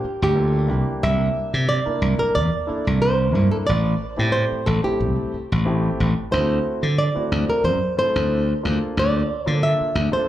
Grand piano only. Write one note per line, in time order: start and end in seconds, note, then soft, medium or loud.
0.35 0.66 A#3 medium
0.35 0.67 D4 medium
0.35 0.69 F4 medium
0.35 0.69 A4 medium
0.68 1.62 A#3 medium
0.68 1.62 D4 medium
0.68 1.62 E4 medium
0.68 1.62 G4 medium
1.85 2.36 A#3 medium
1.85 2.36 D4 medium
1.85 2.36 E4 medium
1.85 2.36 A#4 medium
2.67 3.09 A#3 medium
2.67 3.09 D4 medium
2.67 3.09 E4 medium
2.67 3.09 A4 medium
3.32 3.67 A#3 medium
3.32 3.67 D4 medium
3.32 3.67 E4 medium
3.32 3.67 A#4 medium
4.17 4.58 A3 medium
4.17 4.58 C4 medium
4.17 4.58 E4 medium
4.17 4.58 G4 medium
4.83 5.34 A3 medium
4.83 5.34 C4 medium
4.83 5.34 E4 medium
4.83 5.34 G4 medium
5.65 6.07 A3 medium
5.65 6.07 C4 medium
5.65 6.07 E4 medium
5.65 6.07 G4 medium
6.31 6.83 A3 medium
6.31 6.84 C4 medium
6.31 6.84 E4 medium
6.31 6.84 F#4 medium
7.14 7.65 A3 medium
7.14 7.65 C4 medium
7.14 7.65 E4 medium
7.14 7.66 F#4 medium
7.97 8.38 A3 medium
7.97 8.38 C4 medium
7.97 8.39 E4 medium
7.97 8.39 A4 medium
8.63 9.30 A#3 medium
8.63 9.30 D4 medium
8.63 9.30 F4 medium
8.63 9.30 A4 medium
9.46 9.87 A#3 medium
9.46 9.87 D4 medium
9.46 9.87 F4 medium
9.46 9.87 A4 medium
10.12 10.28 A#3 medium
10.12 10.28 D4 medium
10.12 10.28 F4 medium
10.12 10.28 A4 medium